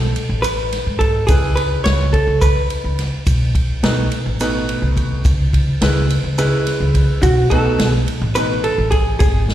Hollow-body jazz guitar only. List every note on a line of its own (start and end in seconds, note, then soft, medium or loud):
0.00 0.46 A4 medium
0.42 1.01 B4 medium
0.99 1.26 A4 medium
1.27 1.57 G#4 medium
1.56 1.83 B4 medium
1.84 2.14 C#5 loud
2.13 2.42 A4 medium
2.41 3.01 B4 medium
7.23 7.50 F#4 medium
7.50 7.88 A4 loud
7.88 8.03 G#4 loud
8.35 8.65 B4 loud
8.64 8.90 A4 medium
8.91 9.18 G#4 medium
9.19 9.54 G#4 medium